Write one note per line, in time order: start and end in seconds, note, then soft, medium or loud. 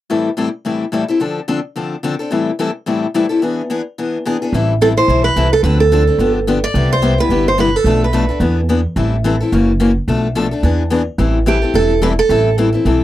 0.10 0.28 A2 medium
0.10 0.28 E3 soft
0.10 0.29 G3 medium
0.10 0.29 C4 medium
0.10 0.29 E4 medium
0.10 0.29 A4 medium
0.37 0.47 A2 medium
0.37 0.48 E3 medium
0.37 0.48 G3 medium
0.37 0.48 C4 medium
0.37 0.48 E4 medium
0.37 0.48 A4 medium
0.65 0.84 A2 medium
0.65 0.84 E3 medium
0.65 0.84 G3 soft
0.65 0.84 C4 soft
0.65 0.84 E4 medium
0.65 0.84 A4 soft
0.92 1.03 A2 medium
0.92 1.03 E3 medium
0.92 1.03 G3 medium
0.92 1.03 C4 medium
0.92 1.04 E4 medium
0.92 1.04 A4 medium
1.08 1.20 G3 soft
1.08 1.20 C4 soft
1.08 1.20 E4 medium
1.08 1.20 A4 medium
1.20 1.39 D3 soft
1.20 1.39 F3 medium
1.20 1.39 C4 medium
1.20 1.40 D4 medium
1.20 1.40 A4 medium
1.48 1.58 D3 medium
1.48 1.59 F3 medium
1.48 1.59 C4 medium
1.48 1.59 D4 medium
1.48 1.59 A4 medium
1.76 1.94 D3 medium
1.76 1.95 F3 medium
1.76 1.95 C4 medium
1.76 1.95 D4 medium
1.76 1.95 A4 medium
2.03 2.14 D3 medium
2.03 2.14 F3 medium
2.03 2.14 C4 medium
2.03 2.14 D4 medium
2.03 2.15 A4 medium
2.19 2.31 C4 soft
2.19 2.31 D4 soft
2.19 2.31 A4 medium
2.31 2.50 A2 medium
2.31 2.50 E3 medium
2.31 2.50 G3 medium
2.31 2.50 C4 medium
2.31 2.50 E4 medium
2.31 2.51 A4 medium
2.59 2.69 A2 medium
2.59 2.70 E3 medium
2.59 2.70 G3 medium
2.59 2.70 C4 medium
2.59 2.70 E4 medium
2.59 2.70 A4 medium
2.86 3.05 A2 medium
2.86 3.05 E3 medium
2.86 3.06 G3 medium
2.86 3.06 C4 medium
2.86 3.06 E4 medium
2.86 3.06 A4 medium
3.14 3.25 A2 medium
3.14 3.25 E3 medium
3.14 3.25 G3 medium
3.14 3.25 C4 medium
3.14 3.25 E4 medium
3.14 3.26 A4 medium
3.29 3.42 G3 soft
3.29 3.42 C4 soft
3.29 3.42 E4 medium
3.29 3.41 A4 medium
3.42 3.61 E3 medium
3.42 3.61 B3 medium
3.42 3.61 D4 medium
3.42 3.62 G#4 medium
3.70 3.80 E3 medium
3.70 3.81 B3 medium
3.70 3.81 D4 medium
3.70 3.81 G#4 medium
3.98 4.17 E3 medium
3.98 4.17 B3 medium
3.98 4.17 D4 medium
3.98 4.17 G#4 medium
4.25 4.36 E3 medium
4.25 4.36 B3 medium
4.25 4.36 D4 medium
4.25 4.37 G#4 medium
4.42 4.54 B3 soft
4.42 4.54 D4 medium
4.42 4.53 G#4 medium
4.53 4.97 A1 medium
4.53 4.72 E3 medium
4.53 4.72 G3 medium
4.53 4.73 C4 medium
4.53 4.73 E4 medium
4.53 4.73 A4 medium
4.81 4.92 E3 medium
4.81 4.92 G3 medium
4.81 4.92 C4 medium
4.81 4.92 E4 medium
4.81 4.87 A4 medium
4.81 4.92 A4 medium
4.97 5.08 C4 soft
4.97 5.09 E4 soft
4.97 5.08 A4 soft
4.97 5.23 C5 medium
5.08 5.32 B1 medium
5.08 5.27 E3 medium
5.08 5.28 G3 medium
5.08 5.28 C4 medium
5.08 5.28 E4 medium
5.08 5.28 A4 medium
5.24 5.50 B4 medium
5.36 5.60 C2 medium
5.36 5.47 E3 medium
5.36 5.47 G3 medium
5.36 5.47 C4 medium
5.36 5.47 E4 medium
5.36 5.47 A4 medium
5.53 5.63 A4 medium
5.63 6.08 D2 medium
5.63 5.83 D3 medium
5.63 5.83 F3 medium
5.63 5.83 C4 medium
5.63 5.83 D4 medium
5.63 5.83 A4 medium
5.63 5.79 B4 medium
5.80 6.32 A4 medium
5.92 6.02 D3 medium
5.92 6.02 F3 medium
5.92 6.03 C4 medium
5.92 6.03 D4 medium
5.92 6.03 A4 medium
6.07 6.20 C4 soft
6.07 6.19 D4 soft
6.07 6.19 A4 soft
6.18 6.63 G1 medium
6.18 6.38 D3 medium
6.18 6.38 F3 medium
6.18 6.39 B3 medium
6.18 6.39 D4 medium
6.18 6.39 G4 medium
6.47 6.58 D3 medium
6.47 6.58 F3 medium
6.47 6.58 B3 medium
6.47 6.58 D4 medium
6.47 6.58 G4 medium
6.64 6.89 D5 medium
6.74 7.19 C2 medium
6.74 6.94 C3 medium
6.74 6.94 G3 medium
6.74 6.94 B3 medium
6.74 6.94 E4 medium
6.74 6.94 G4 medium
6.93 7.17 C5 medium
7.02 7.13 C3 medium
7.02 7.13 G3 medium
7.02 7.13 B3 medium
7.02 7.13 E4 medium
7.02 7.13 G4 medium
7.18 7.30 B3 soft
7.18 7.30 E4 soft
7.18 7.30 G4 soft
7.18 7.45 B4 medium
7.29 7.74 G1 medium
7.29 7.49 C3 medium
7.29 7.49 G3 medium
7.29 7.49 B3 medium
7.29 7.49 E4 medium
7.29 7.49 G4 medium
7.48 7.59 C5 medium
7.58 7.68 C3 medium
7.58 7.69 G3 medium
7.58 7.69 B3 medium
7.58 7.69 E4 medium
7.58 7.69 G4 medium
7.58 7.76 B4 medium
7.76 8.03 A4 medium
7.84 8.29 B1 medium
7.84 8.04 B2 medium
7.84 8.05 F3 medium
7.84 8.05 A3 medium
7.84 8.05 D4 medium
7.84 8.05 A4 medium
8.04 8.55 B4 medium
8.13 8.24 B2 medium
8.13 8.24 F3 medium
8.13 8.24 A3 medium
8.13 8.24 D4 medium
8.13 8.24 A4 medium
8.29 8.40 A3 soft
8.29 8.40 D4 soft
8.29 8.40 A4 soft
8.40 8.85 E2 medium
8.40 8.59 E3 medium
8.40 8.60 B3 medium
8.40 8.60 D4 medium
8.40 8.60 G#4 medium
8.69 8.79 E3 medium
8.69 8.79 B3 medium
8.69 8.80 D4 medium
8.69 8.80 G#4 medium
8.96 9.41 A1 medium
8.96 9.15 E3 soft
8.96 9.15 G3 medium
8.96 9.15 C4 medium
8.96 9.15 E4 medium
8.96 9.16 A4 medium
9.24 9.35 E3 medium
9.24 9.35 G3 medium
9.24 9.35 C4 medium
9.24 9.35 E4 medium
9.24 9.35 A4 medium
9.40 9.53 C4 soft
9.40 9.53 E4 soft
9.40 9.52 A4 soft
9.52 9.97 F#1 medium
9.52 9.71 C#3 medium
9.52 9.71 E3 medium
9.52 9.71 A#3 medium
9.52 9.71 C#4 medium
9.52 9.72 F#4 medium
9.80 9.90 C#3 medium
9.80 9.90 E3 medium
9.80 9.91 A#3 medium
9.80 9.91 C#4 medium
9.80 9.91 F#4 medium
10.08 10.52 B1 medium
10.08 10.27 B2 medium
10.08 10.27 F3 medium
10.08 10.27 A3 medium
10.08 10.27 D4 medium
10.08 10.27 A4 medium
10.35 10.46 B2 medium
10.35 10.46 F3 medium
10.35 10.46 A3 medium
10.35 10.46 D4 medium
10.35 10.46 A4 medium
10.51 10.63 A3 soft
10.51 10.63 D4 soft
10.51 10.63 A4 soft
10.63 11.07 E2 medium
10.63 10.82 E3 medium
10.63 10.82 B3 medium
10.63 10.82 D4 medium
10.63 10.83 G#4 medium
10.90 11.01 E3 medium
10.90 11.01 B3 medium
10.90 11.02 D4 medium
10.90 11.02 G#4 medium
11.18 11.63 A1 medium
11.18 11.37 E3 medium
11.18 11.38 G3 medium
11.18 11.38 C4 medium
11.18 11.38 E4 medium
11.18 11.38 A4 medium
11.46 11.57 E3 medium
11.46 11.57 G3 medium
11.46 11.57 C4 medium
11.46 11.57 E4 medium
11.46 11.73 G4 medium
11.46 11.57 A4 medium
11.62 11.73 C4 soft
11.62 11.74 E4 soft
11.62 11.73 A4 soft
11.74 12.18 E1 medium
11.74 11.93 E3 soft
11.74 11.93 G3 medium
11.74 11.93 C4 medium
11.74 11.93 E4 medium
11.74 12.03 A4 medium
11.74 11.94 A4 medium
12.02 12.12 E3 medium
12.02 12.12 G3 medium
12.02 12.13 C4 medium
12.02 12.13 E4 medium
12.02 12.13 A4 medium
12.02 12.08 B4 medium
12.19 12.55 A4 medium
12.29 12.74 A1 medium
12.29 12.48 E3 medium
12.29 12.49 G3 medium
12.29 12.49 C4 medium
12.29 12.49 E4 medium
12.29 12.49 A4 medium
12.58 12.68 E3 medium
12.58 12.68 G3 medium
12.58 12.68 C4 medium
12.58 12.69 E4 medium
12.58 12.69 A4 medium
12.73 12.85 C4 soft
12.73 12.85 E4 soft
12.73 12.84 A4 soft
12.85 13.04 B1 medium
12.85 13.04 E3 medium
12.85 13.04 G3 medium
12.85 13.04 C4 medium
12.85 13.04 E4 medium
12.85 13.04 A4 medium